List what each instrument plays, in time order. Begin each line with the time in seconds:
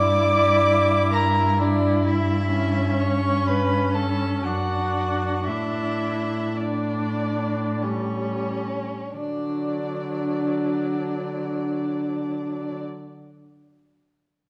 Already playing: cello G2, viola E4, violin D5 D6
1.12 violin A#4 A#5
1.61 violin D4 D5, viola E4
2.06 violin E4 E5
2.55 viola C#4
2.99 violin C#5 C#6
3.47 violin B4 B5
3.94 violin A4 A5
4.44 cello F#2, viola D4, violin F#4 F#5
5.47 cello A2, viola D4, violin E4 E5
6.57 viola D4, violin D5
6.62 violin D4
7.83 viola G3, violin C#4 C#5
9.15 cello D3, viola F#3, violin D4 D5